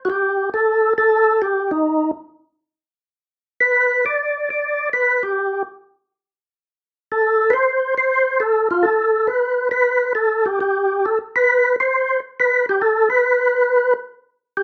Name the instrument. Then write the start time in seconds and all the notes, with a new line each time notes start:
tonewheel organ
0.05 F#4
0.10 G4
0.54 A4
0.98 A4
1.42 G4
1.71 D#4
3.61 B4
4.06 D5
4.50 D5
4.93 B4
5.23 G4
7.12 A4
7.50 B4 C5
7.98 C5
8.40 A4
8.71 F4
8.83 A4
9.27 B4
9.71 B4
10.15 A4
10.46 G4
10.60 G4
11.05 A4
11.36 B4
11.80 C5
12.40 B4
12.69 G4
12.82 A4
13.10 B4
14.57 G4